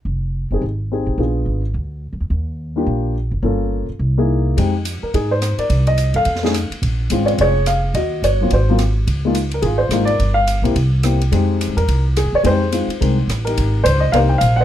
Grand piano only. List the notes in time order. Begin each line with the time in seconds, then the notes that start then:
0.52 C4 D#4 G4 G#4
0.92 C4 D#4 G4 G#4
1.19 B3 D4 F4 G#4
2.76 A#3 D4 F4 G4
3.43 A#3 C#4 F4 A4
4.18 A#3 D#4 E4 G#4
4.57 G#3 C4 D#4 G4
5.03 A#4
5.14 D#4 G#4
5.31 C5
5.59 A#4 D5
5.87 D#5
6.15 A4 F5
6.43 A3 C#4 D#4 G#4
7.12 G#3 C4 C#4 F4
7.26 C#5
7.41 G#4 C#5
7.67 F5
7.95 F#4 D#5
8.24 C#5
8.41 F#3 A#3 C4 F4
8.53 F#4 C5
8.69 F#3 A#3 C4 F4
9.25 G#3 A#3 D#4 F4
9.54 A#4
9.62 F4 G#4
9.78 C5
9.91 G#3 A#3 D#4 F4
10.05 D5
10.10 A#4
10.34 F5
10.64 A#3 C4 E4 G4
11.04 A#3 C4 E4 G4
11.32 G#3 C4 D#4 G4
11.77 A#4
12.17 G#4
12.35 C#5
12.43 G#3 C4 D#4 G4 G#4 C5
12.72 G#3 C4 D#4 F4
13.01 G#3 C4 D#4 A#4
13.45 D#4 G4 A#4
13.84 C5
14.00 D#5
14.12 A#3 C4 D#4 G4 A#4 C5 F5
14.29 G5
14.38 F5
14.56 D#5 F#5
14.60 C5